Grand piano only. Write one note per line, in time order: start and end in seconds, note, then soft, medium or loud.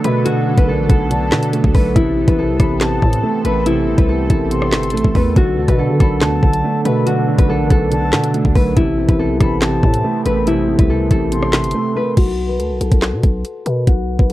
0.00 0.26 D3 medium
0.00 0.04 A3 medium
0.04 1.11 A3 medium
0.26 0.45 D3 medium
0.47 0.67 D3 medium
0.68 0.87 D3 medium
0.89 1.09 D3 medium
1.11 1.30 D3 medium
1.32 1.96 D3 medium
1.53 1.73 A3 medium
1.74 1.96 A3 medium
1.96 2.15 C3 medium
2.17 2.37 C3 medium
2.38 2.58 C3 medium
2.60 2.80 C3 medium
2.81 3.01 C3 medium
3.02 3.64 C3 medium
3.23 3.43 A3 medium
3.45 4.51 A3 medium
3.66 3.86 C3 loud
3.87 4.07 C3 medium
4.09 4.28 C3 medium
4.30 4.50 C3 medium
4.51 4.71 C3 medium
4.72 5.36 C3 medium
4.94 5.13 A3 medium
5.15 5.36 A3 medium
5.36 5.56 D3 medium
5.58 5.77 D3 medium
5.79 5.99 D3 medium
6.00 6.20 D3 medium
6.21 6.41 D3 medium
6.42 7.05 D3 medium
6.64 6.83 A3 medium
6.85 7.91 A3 medium
7.07 7.26 D3 medium
7.28 7.47 D3 medium
7.49 7.69 D3 medium
7.70 7.90 D3 medium
7.92 8.11 D3 medium
8.13 8.77 D3 medium
8.34 8.54 A3 medium
8.55 8.77 A3 medium
8.77 8.96 C3 medium
8.98 9.18 C3 medium
9.19 9.39 C3 medium
9.41 9.61 C3 medium
9.62 9.82 C3 medium
9.83 10.45 C3 medium
10.04 10.24 A3 medium
10.26 11.32 A3 medium
10.47 10.67 C3 medium
10.68 10.88 C3 medium
10.90 11.09 C3 medium
11.11 11.31 C3 medium
11.32 11.51 C3 medium
11.53 12.17 C3 medium
11.74 11.94 A3 medium
11.96 12.17 A3 medium